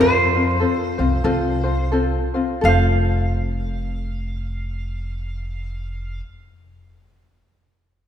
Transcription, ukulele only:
Already playing: C4 A4
0.00 F4 C5
0.35 C4 F4 C5
0.60 C4 F4 A4 C5
0.98 C4 F4 C5
1.24 C4 F4 A4 C5
1.64 C4 F4 C5
1.92 C4 F4 A4 C5
2.34 C4 F4 C5
2.61 C4 A4
2.66 F4 C5

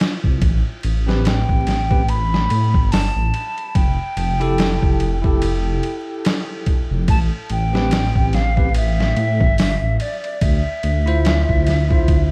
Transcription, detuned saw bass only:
0.24 C2
0.42 A1
0.84 A1
1.49 A1
2.51 A2
2.74 G1
3.16 A1
3.75 F1
4.17 F1
4.83 F1
6.91 F1
7.08 A1
7.50 A1
8.16 A1
9.17 A2
9.41 G1
9.82 A1
10.41 D2
10.84 D2
11.49 D2

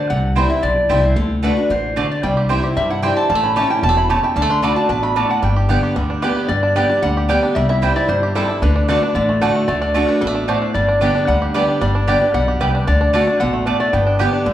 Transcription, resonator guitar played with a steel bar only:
Already playing: C5
0.10 F#5
0.50 E5
0.63 D5
1.03 C5
1.16 A4
1.44 B4
1.71 C5
1.97 C5
2.11 D5
2.24 G5
2.77 E5
2.90 F#5
3.03 G5
3.16 A5
3.30 A5
3.44 B5
3.57 A5
3.70 G5
3.83 A5
3.98 B5
4.11 A5
4.24 G5
4.36 A5
4.50 C6
4.63 B5
4.76 A5
4.90 A5
5.03 B5
5.17 A5
5.30 F#5
5.44 G5
6.22 B4
6.48 D5
6.76 D5
7.02 F#5
7.29 G5
7.55 E5
7.69 E5
7.96 D5
8.09 C5
8.36 A4
8.62 B4
8.89 B4
9.15 D5
9.42 F#5
9.68 D5
9.82 D5
10.08 B4
10.21 A4
10.48 C5
10.74 D5
11.02 D5
11.27 F#5
11.54 B4
11.81 D5
12.08 D5
12.34 F#5
12.61 B4
12.88 D5
13.14 D5
13.40 F#5
13.80 D5
13.93 G5

